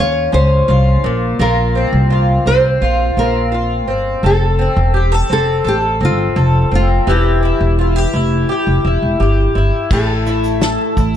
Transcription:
0.00 0.26 D#2 medium
0.00 0.31 C#4 soft
0.00 0.68 F4 medium
0.00 0.31 C#5 loud
0.32 0.62 C#2 medium
0.32 1.11 C#4 medium
0.32 1.41 C5 loud
0.68 0.98 C2 medium
0.68 1.40 F4 medium
1.04 1.33 A#1 medium
1.04 1.38 A#2 medium
1.39 1.83 A#1 medium
1.39 4.23 A#2 medium
1.39 2.10 F4 medium
1.39 2.47 A#4 medium
1.75 2.46 C4 medium
1.93 2.36 C2 medium
2.10 2.81 F4 medium
2.46 2.75 C2 medium
2.46 3.17 C4 medium
2.46 3.18 C5 medium
2.81 3.10 A#1 medium
2.81 3.51 F4 medium
3.17 3.88 A#1 medium
3.17 3.87 C4 medium
3.17 4.26 A#4 medium
3.52 4.23 F4 medium
3.88 4.17 G1 medium
3.88 4.58 C4 medium
4.23 4.67 F1 medium
4.23 4.93 A4 medium
4.23 4.92 A4 medium
4.59 5.29 C4 medium
4.76 5.20 E1 medium
4.94 5.12 G4 medium
5.12 5.63 A4 medium
5.30 5.59 F1 medium
5.30 6.00 C4 medium
5.30 5.68 A4 medium
5.64 6.02 A1 medium
5.64 5.78 G4 medium
5.64 6.35 A4 medium
6.00 6.30 G1 medium
6.00 6.71 C4 medium
6.05 6.74 F4 medium
6.36 6.65 F1 medium
6.36 7.07 A4 medium
6.71 7.01 F1 medium
6.71 7.42 C4 soft
6.71 7.06 F4 medium
7.07 7.51 E1 medium
7.07 10.57 E3 medium
7.07 9.18 E4 medium
7.07 7.78 G4 medium
7.43 8.13 E4 medium
7.61 8.04 E1 medium
7.79 7.96 F4 medium
7.96 8.48 G4 soft
8.13 8.43 F1 medium
8.13 8.84 E4 medium
8.49 9.19 G4 medium
8.67 8.81 F1 medium
8.85 8.99 E1 medium
8.85 9.55 E4 medium
9.02 9.17 E1 medium
9.20 9.49 G1 medium
9.20 9.98 G4 medium
9.55 9.70 G1 medium
9.55 10.26 E4 medium
9.91 10.75 A1 medium
9.91 11.17 A2 medium
9.91 11.17 A4 medium
9.91 kick loud
9.91 crash medium
10.27 10.97 E4 medium
10.27 shaker soft
10.44 shaker medium
10.61 11.17 A4 medium
10.61 snare loud
10.61 shaker medium
10.97 11.17 A1 medium
10.97 11.17 E4 medium
10.97 kick medium
10.97 shaker soft

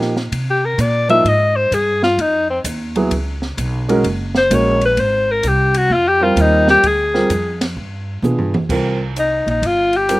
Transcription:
0.00 0.31 A#2 medium
0.00 0.13 F3 medium
0.00 0.14 A#3 medium
0.00 0.14 D#4 medium
0.00 0.14 G4 medium
0.00 snare soft
0.16 snare soft
0.32 0.77 C3 medium
0.32 kick soft
0.32 ride medium
0.50 0.67 G4 medium
0.65 0.82 A#4 medium
0.78 1.24 A#2 medium
0.78 1.10 D5 medium
0.78 kick soft
0.78 hi-hat pedal medium
0.78 ride medium
1.09 1.23 F3 medium
1.09 1.24 A#3 medium
1.09 1.24 D#4 medium
1.09 1.24 F4 medium
1.09 1.30 E5 loud
1.09 ride soft
1.25 1.70 G#2 medium
1.25 1.57 D#5 medium
1.25 kick soft
1.25 ride medium
1.56 1.75 C5 medium
1.71 2.17 G2 medium
1.71 2.03 G#4 medium
1.71 kick soft
1.71 hi-hat pedal medium
1.71 ride medium
2.03 2.22 F4 medium
2.03 snare medium
2.18 2.63 F2 medium
2.18 2.50 D#4 medium
2.18 kick soft
2.18 ride medium
2.50 2.59 C4 medium
2.64 3.10 D#2 medium
2.64 kick soft
2.64 hi-hat pedal medium
2.64 ride medium
2.96 3.10 F#3 medium
2.96 3.10 B3 medium
2.96 3.10 E4 medium
2.96 3.10 G#4 medium
2.96 ride soft
3.10 3.56 C#2 medium
3.10 kick soft
3.10 ride medium
3.42 snare soft
3.57 4.03 B1 medium
3.57 kick soft
3.57 hi-hat pedal soft
3.57 ride medium
3.89 4.03 G#3 medium
3.89 4.03 C#4 medium
3.89 4.03 F#4 medium
3.89 4.03 A#4 medium
3.89 ride medium
4.04 4.49 F#1 medium
4.04 kick soft
4.04 ride medium
4.35 4.56 C5 medium
4.35 snare medium
4.50 4.96 A#1 loud
4.50 4.78 G#3 medium
4.50 4.79 C#4 soft
4.50 4.79 F#4 soft
4.50 4.79 A#4 medium
4.50 4.84 C#5 medium
4.50 kick soft
4.50 hi-hat pedal medium
4.50 ride medium
4.81 ride soft
4.85 5.01 B4 medium
4.97 5.42 G#1 medium
4.97 5.33 C5 loud
4.97 kick soft
4.97 ride medium
5.31 5.49 A#4 medium
5.43 5.89 C2 loud
5.43 kick soft
5.43 hi-hat pedal soft
5.43 ride medium
5.48 5.79 G4 medium
5.74 5.95 F#4 medium
5.74 ride medium
5.90 6.35 F2 medium
5.90 6.10 F4 medium
5.90 kick soft
6.08 6.25 G4 loud
6.21 6.80 G3 medium
6.21 6.80 C4 medium
6.21 6.80 F4 medium
6.21 6.42 F4 medium
6.21 6.81 A#4 medium
6.36 6.82 D#2 loud
6.36 kick soft
6.36 hi-hat pedal soft
6.36 ride medium
6.41 6.70 D#4 medium
6.68 6.89 G4 loud
6.68 snare soft
6.83 7.28 D2 medium
6.83 kick soft
6.83 ride medium
6.88 7.63 G#4 medium
7.14 7.28 G3 medium
7.14 7.28 C4 medium
7.14 7.29 F4 medium
7.14 7.29 A#4 medium
7.14 snare soft
7.30 7.75 F2 medium
7.30 kick soft
7.30 hi-hat pedal medium
7.30 ride medium
7.61 snare medium
7.61 ride medium
7.77 8.22 G2 medium
7.77 kick soft
8.22 8.38 B2 loud
8.22 8.51 B3 soft
8.22 8.51 D4 soft
8.22 8.51 F4 soft
8.22 8.51 G#4 medium
8.22 hi-hat pedal medium
8.22 high tom medium
8.38 8.53 G2 medium
8.38 high tom medium
8.54 8.68 F2 medium
8.54 high tom medium
8.69 9.43 C2 medium
8.69 8.97 G3 medium
8.69 8.97 C4 medium
8.69 8.98 F4 soft
8.69 8.98 A#4 medium
8.69 kick medium
8.69 crash medium
9.16 9.46 D#4 medium
9.16 hi-hat pedal soft
9.16 ride medium
9.46 9.61 A#1 medium
9.46 9.67 D#4 medium
9.46 ride soft
9.62 10.20 G1 medium
9.62 9.98 F4 loud
9.62 kick soft
9.62 ride medium
9.93 10.20 G4 medium
9.93 ride soft
10.09 10.20 G3 medium
10.09 10.20 C4 soft
10.09 10.20 F4 medium
10.09 10.20 A#4 medium
10.09 hi-hat pedal medium
10.09 ride medium

